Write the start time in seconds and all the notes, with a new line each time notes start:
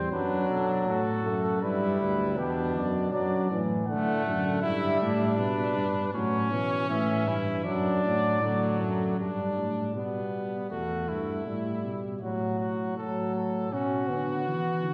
Already playing: E2 G3
0.12 F#2 F#3 D4 B4
0.49 B2 A4
0.87 A2 F#4 A4
1.24 F#2 A3
1.62 G2 G3 E4 B4
2.00 D2 B4
2.37 E2 B2 D4 G4
2.75 F#2 D5
3.12 F#2 F#3 D4 D5
3.51 A2 E3
3.87 A2 D3 A3 F#5
4.26 F#2 D3
4.62 G2 G3 E4 E5
5.01 A2 D4
5.38 B2 B4
5.77 G2
6.13 A2 F#3 C#4 C#5
6.52 B2 E3
6.89 A2 E3 E5
7.27 G2 E4
7.65 F#2 F#3 D4 D5
8.04 A2 F#3
8.42 A2 D3 F#3
8.81 F#2 A3
9.19 G2 G3 D4
9.57 A2
9.95 B2 G3 B3
10.70 E2 A3 F#4
11.09 G2 E4
11.46 A2 G3
11.84 B2
12.21 A2 F#3 F#4
12.60 F#4
12.96 A2 F#3 A4
13.36 A4
13.71 B2 C#4 F#4
14.09 D3 B3
14.47 E3
14.85 D3